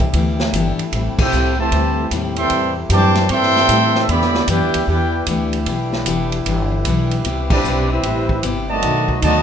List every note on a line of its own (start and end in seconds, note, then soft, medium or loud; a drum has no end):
0.00 0.12 C2 loud
0.00 0.88 D3 medium
0.00 4.05 A3 medium
0.00 4.05 E4 medium
0.00 0.89 G4 medium
0.13 0.52 D2 medium
0.13 0.41 E3 medium
0.13 0.42 B3 medium
0.13 0.42 D4 medium
0.13 0.42 G4 medium
0.13 kick soft
0.13 ride medium
0.40 snare medium
0.53 0.77 G1 loud
0.53 0.81 E3 medium
0.53 0.81 B3 medium
0.53 0.81 D4 medium
0.53 0.82 G4 medium
0.53 kick soft
0.53 hi-hat pedal medium
0.53 ride medium
0.79 muted upright bass stroke soft
0.79 ride medium
0.92 1.08 A1 medium
0.92 1.20 A2 medium
0.92 4.06 C3 medium
0.92 1.20 G3 medium
0.92 1.21 C4 medium
0.92 1.21 E4 medium
0.92 8.78 G4 medium
0.92 kick soft
0.92 ride medium
1.06 1.19 G1 medium
1.18 1.31 E1 medium
1.18 1.55 C4 medium
1.18 1.55 E4 medium
1.18 1.56 E4 medium
1.18 1.55 G4 medium
1.18 1.57 A4 medium
1.18 1.56 C5 medium
1.18 1.57 G5 loud
1.18 kick medium
1.18 crash medium
1.32 1.71 C2 medium
1.32 1.60 A2 medium
1.32 1.60 G3 medium
1.32 1.61 C4 medium
1.32 1.61 E4 medium
1.32 hi-hat pedal medium
1.56 2.07 C3 medium
1.56 2.06 E3 medium
1.56 2.06 A3 medium
1.60 2.09 G4 medium
1.60 2.09 C5 medium
1.60 2.09 E5 medium
1.60 2.09 A5 medium
1.72 2.10 D2 medium
1.72 2.00 A2 soft
1.72 2.00 G3 medium
1.72 2.01 C4 medium
1.72 kick soft
1.72 ride medium
1.76 2.01 E4 medium
2.11 2.49 D#2 loud
2.11 2.39 A2 medium
2.11 2.39 G3 medium
2.11 2.39 C4 medium
2.11 2.39 E4 medium
2.11 kick soft
2.11 hi-hat pedal medium
2.11 ride medium
2.36 2.74 E3 medium
2.36 2.74 G3 medium
2.36 2.74 C4 medium
2.36 2.74 A4 medium
2.36 2.74 E5 medium
2.36 2.74 G5 medium
2.36 2.74 C6 loud
2.36 ride medium
2.50 2.89 E2 medium
2.50 2.79 A2 medium
2.50 2.79 G3 medium
2.50 2.79 C4 medium
2.50 kick soft
2.50 ride medium
2.54 2.80 E4 medium
2.89 3.28 F#2 loud
2.89 3.18 A2 medium
2.89 3.26 E3 loud
2.89 3.18 G3 medium
2.89 3.19 C4 medium
2.89 3.27 D4 loud
2.89 3.19 E4 medium
2.89 3.27 G4 loud
2.89 3.28 C5 loud
2.89 3.28 G5 loud
2.89 3.28 A5 loud
2.89 3.28 D6 loud
2.89 kick soft
2.89 hi-hat pedal medium
2.89 ride medium
3.15 snare soft
3.15 ride medium
3.29 3.68 G2 medium
3.29 3.57 A2 soft
3.29 4.04 E3 loud
3.29 4.04 G3 medium
3.29 3.58 G3 soft
3.29 4.05 C4 medium
3.29 3.58 C4 soft
3.29 3.58 E4 medium
3.29 4.06 A4 loud
3.29 4.06 E5 loud
3.29 4.05 G5 loud
3.29 4.06 C6 loud
3.29 kick soft
3.29 ride medium
3.43 snare soft
3.56 snare medium
3.69 4.07 A2 loud
3.69 3.96 A2 medium
3.69 3.96 G3 medium
3.69 3.97 C4 medium
3.69 3.97 E4 medium
3.69 kick soft
3.69 hi-hat pedal medium
3.69 ride medium
3.95 snare soft
4.08 4.47 E2 medium
4.08 7.21 D3 medium
4.08 4.48 D3 medium
4.08 4.36 E3 medium
4.08 4.48 G3 medium
4.08 4.48 B3 medium
4.08 4.36 B3 medium
4.08 4.37 D4 medium
4.08 8.78 E4 medium
4.08 4.49 G4 medium
4.08 4.37 G4 medium
4.08 9.43 B4 medium
4.08 4.49 D5 loud
4.08 4.49 E5 medium
4.08 4.49 B5 loud
4.08 kick soft
4.08 ride medium
4.21 snare soft
4.34 snare medium
4.48 4.62 F#2 loud
4.48 4.75 E3 medium
4.48 4.76 B3 medium
4.48 4.85 B3 medium
4.48 4.85 D4 medium
4.48 4.76 D4 medium
4.48 4.86 E4 medium
4.48 4.85 G4 medium
4.48 4.76 G4 medium
4.48 4.86 B4 medium
4.48 4.86 D5 medium
4.48 4.86 G5 medium
4.48 kick soft
4.48 hi-hat pedal medium
4.48 ride medium
4.62 4.74 E2 medium
4.74 4.87 D2 medium
4.74 ride medium
4.87 5.26 E2 medium
4.87 5.15 E3 medium
4.87 5.15 B3 medium
4.87 5.25 B3 medium
4.87 5.16 D4 medium
4.87 5.25 D4 medium
4.87 5.26 E4 medium
4.87 5.25 G4 medium
4.87 5.16 G4 medium
4.87 5.26 B4 medium
4.87 5.26 D5 medium
4.87 5.26 G5 medium
4.87 kick soft
5.26 5.65 D2 loud
5.26 5.55 E3 medium
5.26 5.55 B3 medium
5.26 5.55 D4 medium
5.26 5.55 G4 medium
5.26 kick soft
5.26 hi-hat pedal medium
5.26 ride medium
5.53 ride medium
5.66 6.05 B1 medium
5.66 5.94 E3 medium
5.66 5.94 B3 medium
5.66 5.95 D4 medium
5.66 5.95 G4 medium
5.66 kick soft
5.66 ride medium
5.93 snare soft
6.06 6.44 E1 medium
6.06 6.33 E3 medium
6.06 6.34 B3 medium
6.06 6.34 D4 medium
6.06 6.34 G4 medium
6.06 kick soft
6.06 hi-hat pedal medium
6.06 ride medium
6.32 ride medium
6.46 6.84 G1 medium
6.46 6.73 E3 medium
6.46 6.73 B3 medium
6.46 6.74 D4 medium
6.46 6.74 G4 medium
6.46 kick soft
6.46 ride medium
6.85 7.23 B1 loud
6.85 7.13 E3 medium
6.85 7.13 B3 medium
6.85 7.13 D4 medium
6.85 7.14 G4 medium
6.85 kick soft
6.85 hi-hat pedal medium
6.85 ride medium
7.11 ride medium
7.24 7.63 C2 loud
7.24 7.52 C3 medium
7.24 7.52 B3 medium
7.24 8.81 C4 medium
7.24 7.53 E4 medium
7.24 7.53 G4 medium
7.24 kick soft
7.24 ride medium
7.50 7.88 G3 medium
7.50 7.88 C4 medium
7.50 7.88 D4 medium
7.50 7.88 G4 medium
7.50 7.89 B4 medium
7.50 7.88 D5 loud
7.50 kick loud
7.50 crash medium
7.64 8.02 B1 medium
7.64 7.91 C3 medium
7.64 7.92 B3 medium
7.64 7.92 E4 medium
7.64 7.92 G4 medium
7.64 hi-hat pedal medium
7.90 8.43 G3 medium
7.90 8.44 C4 medium
7.90 8.43 E4 medium
7.90 8.44 G4 medium
7.90 8.44 B4 medium
7.90 8.44 E5 medium
8.03 8.42 A1 medium
8.03 8.31 C3 soft
8.03 8.31 B3 medium
8.03 8.31 E4 medium
8.03 8.32 G4 medium
8.03 kick soft
8.03 ride medium
8.29 kick medium
8.43 8.81 G1 loud
8.43 8.70 C3 medium
8.43 8.70 B3 medium
8.43 8.71 E4 medium
8.43 8.71 G4 medium
8.43 kick soft
8.43 hi-hat pedal medium
8.43 ride medium
8.69 9.19 D#3 medium
8.69 9.19 F#3 medium
8.69 9.19 A3 medium
8.69 9.18 F#4 medium
8.69 9.18 D5 medium
8.69 9.19 D#5 medium
8.69 9.19 A5 loud
8.82 9.21 B1 medium
8.82 9.10 B2 soft
8.82 9.43 B2 medium
8.82 9.10 D#3 medium
8.82 9.43 A3 medium
8.82 9.11 A3 medium
8.82 9.11 D4 medium
8.82 9.43 D#4 medium
8.82 kick soft
8.82 ride medium
9.08 kick medium
9.21 9.43 D2 loud
9.21 9.43 B2 medium
9.21 9.43 D#3 medium
9.21 9.43 F#3 medium
9.21 9.43 A3 medium
9.21 9.43 D4 medium
9.21 9.43 D#4 medium
9.21 9.43 F#4 loud
9.21 9.43 D5 medium
9.21 9.43 D#5 medium
9.21 9.43 A5 loud
9.21 kick soft
9.21 hi-hat pedal medium
9.21 ride medium